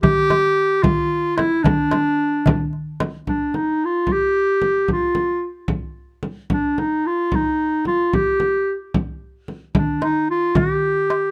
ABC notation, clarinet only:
X:1
M:6/8
L:1/8
Q:3/8=74
K:none
V:1 name="Clarinet"
G3 F2 E | D4 z2 | D _E F G3 | F2 z4 |
D _E F E2 F | G2 z4 | D _E F G3 |]